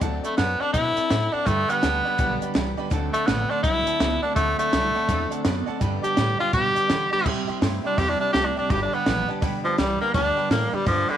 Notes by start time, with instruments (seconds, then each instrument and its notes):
0.01 upright bass D2, steel-string acoustic guitar D3 F#3 C4 D4 A4, upright piano D5 F#5 A5, kick, closed hi-hat
0.23 tenor saxophone A3, steel-string acoustic guitar C4 D4 A4, upright piano D5 F#5 B5, muted upright bass stroke, closed hi-hat
0.37 upright bass F#2, steel-string acoustic guitar F#3 C4 D4 A4, tenor saxophone B3, upright piano D5 F#5 A5, snare, closed hi-hat
0.60 steel-string acoustic guitar C4 D4 A4, tenor saxophone D4, upright piano D5 F#5 A5, muted upright bass stroke
0.73 upright bass B2, steel-string acoustic guitar D3 F#3 C4 D4 A4, tenor saxophone E4, upright piano D5 F#5, kick, closed hi-hat
0.96 steel-string acoustic guitar C4 D4 A4, upright piano D5 F#5 A5, muted upright bass stroke, closed hi-hat
1.09 upright bass A2, steel-string acoustic guitar F#3 C4 D4 A4, upright piano D5 F#5 A5, snare, closed hi-hat
1.32 steel-string acoustic guitar C4 D4 A4, tenor saxophone D4, upright piano D5 F#5 A5, muted upright bass stroke
1.46 steel-string acoustic guitar G2 D3 G3 B3 D4 G4, clean electric guitar G2 D3, upright bass G2, tenor saxophone A3, upright piano D5 G5 B5, kick, closed hi-hat
1.68 steel-string acoustic guitar G3 B3 D4 G4, tenor saxophone B3, upright piano D5 G5 B5, muted upright bass stroke, closed hi-hat
1.81 upright bass D2, clean electric guitar G2 D3, steel-string acoustic guitar G3 B3 D4 G4, upright piano D5 G5 A5, snare, closed hi-hat
2.05 clean electric guitar G2 D3, steel-string acoustic guitar G3 B3 D4 G4, upright piano D5 G5 B5
2.18 upright bass B1, steel-string acoustic guitar G2 D3 G3 B3 D4 G4, clean electric guitar G2 D3, upright piano D5 G5 B5, kick, closed hi-hat
2.41 steel-string acoustic guitar G3 B3 D4 G4, upright piano D5 G5 B5, muted upright bass stroke, closed hi-hat
2.54 upright bass C2, clean electric guitar G2 E3, steel-string acoustic guitar G3 B3 D4 G4, upright piano D5 G5 B5, snare, closed hi-hat
2.77 clean electric guitar G2 D3, steel-string acoustic guitar G3 B3 D4 G4, upright piano D5 G5 B5, muted upright bass stroke
2.90 upright bass D2, steel-string acoustic guitar D3 F#3 C4 D4 A4, clean electric guitar D3 A3, upright piano D5 F#5 A5, kick, closed hi-hat
3.13 tenor saxophone A3, steel-string acoustic guitar C4 D4 A4, upright piano D5 F#5 A5, muted upright bass stroke, closed hi-hat
3.27 upright bass A1, clean electric guitar D3 A3, steel-string acoustic guitar F#3 C4 D4 A4, tenor saxophone B3, upright piano D5 F#5 B5, snare, closed hi-hat
3.49 clean electric guitar D3 A3, steel-string acoustic guitar C4 D4 A4, tenor saxophone D4, upright piano D5 F#5 C6
3.63 upright bass C2, clean electric guitar D3 A3, steel-string acoustic guitar D3 F#3 C4 D4 A4, tenor saxophone E4, upright piano D5 A5, kick, closed hi-hat
3.85 steel-string acoustic guitar C4 D4 A4, upright piano D5 F#5 A5, muted upright bass stroke, closed hi-hat
3.99 upright bass C#2, clean electric guitar D3 B3, steel-string acoustic guitar F#3 C4 D4 A4, upright piano D5 F#5, snare, closed hi-hat
4.22 clean electric guitar D3 A3, steel-string acoustic guitar C4 D4 A4, tenor saxophone D4, upright piano D5 F#5 A5, muted upright bass stroke
4.35 upright bass D2, clean electric guitar D3 A3, steel-string acoustic guitar D3 F#3 C4 D4 A4, tenor saxophone A3, upright piano D5 F#5 A5, kick, closed hi-hat
4.58 tenor saxophone A3, steel-string acoustic guitar C4 D4 A4, upright piano D5 F#5 A5, muted upright bass stroke, closed hi-hat
4.72 upright bass C2, clean electric guitar D3 A3, steel-string acoustic guitar F#3 C4 D4 A4, upright piano D5 F#5 B5, snare, closed hi-hat
4.95 clean electric guitar D3 A3, steel-string acoustic guitar C4 D4 A4, upright piano D5 F#5 A5, muted upright bass stroke
5.08 upright bass E2, clean electric guitar D3 A3, steel-string acoustic guitar D3 F#3 C4 D4 A4, upright piano D5 F#5 A5, kick, closed hi-hat
5.30 steel-string acoustic guitar C4 D4 A4, upright piano D5 F#5 A5, muted upright bass stroke, closed hi-hat
5.44 upright bass F#2, clean electric guitar D3 B3, steel-string acoustic guitar F#3 C4 D4 A4, upright piano D5 F#5 B5, snare, closed hi-hat
5.66 clean electric guitar D3 A3, steel-string acoustic guitar D4 A4, upright piano D5 F#5 A5, muted upright bass stroke
5.70 steel-string acoustic guitar C4
5.80 steel-string acoustic guitar G2 D3 G3 B3 D4 G4, upright bass G2, clean electric guitar G2 D3, upright piano D5 G5 B5, kick, closed hi-hat
6.02 steel-string acoustic guitar G3 B3 D4 G4, tenor saxophone G4, upright piano D5 G5 A5, muted upright bass stroke, closed hi-hat
6.16 clean electric guitar G2 D3, upright bass A2, steel-string acoustic guitar G3 B3 D4 G4, upright piano D5 G5 B5, snare, closed hi-hat
6.39 clean electric guitar G2 D3, steel-string acoustic guitar G3 B3 D4 G4, tenor saxophone F4, upright piano D5 G5 D6, muted upright bass stroke
6.52 steel-string acoustic guitar G2 D3 G3 B3 D4 G4, clean electric guitar G2 D3, upright bass B2, tenor saxophone G4, upright piano D5 G5 B5, kick, closed hi-hat
6.75 steel-string acoustic guitar G3 B3 D4 G4, upright piano D5 G5 D6, muted upright bass stroke, closed hi-hat
6.88 clean electric guitar G2 E3, upright bass D3, steel-string acoustic guitar G3 B3 D4, upright piano D5 G5 B5, snare, closed hi-hat
7.11 clean electric guitar G2 D3, steel-string acoustic guitar G3 B3 D4 G4, tenor saxophone G4, upright piano D5 G5 B5, muted upright bass stroke
7.24 steel-string acoustic guitar C3 G3 C4 E4 G4, upright bass C3, clean electric guitar C3 G3, upright piano E5 G5 C6, kick, crash
7.47 steel-string acoustic guitar C4 E4 G4, upright piano E5 G5 C6, muted upright bass stroke
7.61 upright bass G2, clean electric guitar C3 A3, steel-string acoustic guitar G3 C4 E4 G4, upright piano E5 G5 C6, snare, open hi-hat
7.84 clean electric guitar C3 G3, steel-string acoustic guitar C4 E4 G4, tenor saxophone D4, upright piano E5 G5 C6, muted upright bass stroke
7.97 upright bass E2, clean electric guitar C3 G3, steel-string acoustic guitar C3 G3 C4 E4 G4, tenor saxophone G4, upright piano E5 G5 C6, kick, open hi-hat
8.09 tenor saxophone D4
8.20 steel-string acoustic guitar C4 E4 G4, tenor saxophone D4, upright piano E5 G5 B5
8.33 upright bass C2, clean electric guitar C3 A3, steel-string acoustic guitar G3 C4 E4, tenor saxophone G4, upright piano E5 G5 A5, snare, open hi-hat
8.45 tenor saxophone D4
8.55 clean electric guitar C3 G3, tenor saxophone D4, steel-string acoustic guitar E4 G4, upright piano E5 G5 D6, muted upright bass stroke
8.60 steel-string acoustic guitar C4
8.69 upright bass G1, steel-string acoustic guitar G2 D3 G3 B3 D4 G4, clean electric guitar G2 D3, tenor saxophone G4, upright piano D5 G5 B5, kick, open hi-hat
8.83 tenor saxophone D4
8.92 steel-string acoustic guitar G3 B3 D4 G4, tenor saxophone B3, upright piano D5 G5 B5, muted upright bass stroke
9.05 upright bass A#1, clean electric guitar G2 E3, steel-string acoustic guitar G3 B3 D4 G4, upright piano D5 G5 B5, snare, open hi-hat
9.28 clean electric guitar G2 D3, steel-string acoustic guitar G3 B3 D4 G4, upright piano D5 G5 A5, muted upright bass stroke
9.41 upright bass B1, steel-string acoustic guitar G2 D3 G3 B3 D4 G4, clean electric guitar G2 D3, upright piano D5 G5 B5, kick, open hi-hat
9.64 tenor saxophone F3, steel-string acoustic guitar G3 B3 D4 G4, upright piano D5 G5 A5
9.78 upright bass C2, clean electric guitar G2 E3, steel-string acoustic guitar G3 B3 D4 G4, tenor saxophone G3, upright piano D5 G5 B5, snare, open hi-hat
10.00 clean electric guitar G2 D3, steel-string acoustic guitar G3 B3 D4 G4, tenor saxophone A#3, upright piano D5 G5 B5, muted upright bass stroke
10.14 upright bass D2, steel-string acoustic guitar G2 D3 G3 B3 D4 G4, clean electric guitar G2 D3, tenor saxophone D4, upright piano D5 G5 A5, kick, open hi-hat
10.36 steel-string acoustic guitar G3 B3 D4 G4, upright piano D5 G5 B5, muted upright bass stroke
10.49 clean electric guitar G2 E3, upright bass A2, steel-string acoustic guitar G3 B3 D4 G4, tenor saxophone A#3, upright piano D5 G5 A5, snare, open hi-hat
10.72 clean electric guitar G2 D3, tenor saxophone G3, steel-string acoustic guitar G3 B3 D4 G4, upright piano D5 G5 B5, muted upright bass stroke
10.86 steel-string acoustic guitar G2 D3 G3 B3 D4 G4, clean electric guitar G2 D3, upright bass G2, tenor saxophone F3, upright piano D5 G5 D6, kick, open hi-hat
11.08 tenor saxophone D3, steel-string acoustic guitar G3 B3 D4 G4, upright piano D5 G5 B5